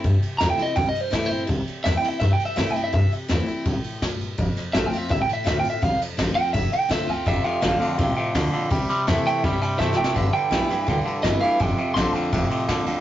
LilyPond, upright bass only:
\new Staff \with { instrumentName = "Upright bass" } { \clef bass \time 4/4 \key c \major \tempo 4 = 166 g,8 r8 e,8 r8 c,8 r8 g,8 bes,8 | c,8 r8 e,8 r8 g,8 r8 bes,8 r8 | g,8 r8 e,8 r8 c,8 r8 g,8 bes,8 | f,,8 r8 a,,8 r8 c,8 r8 d,8 r8 |
c,8 r8 a,,8 r8 f,,8 r8 c,8 d,8 | f,,8 r8 a,,8 r8 c,8 r8 d,8 r8 | c,8 r8 e,8 r8 c,8 r8 g,8 a,,8 | g,,8 r8 b,,8 r8 d,8 r8 g,,8 r8 |
f,,8 r8 a,,8 r8 f,,8 r8 c,8 d,8 | }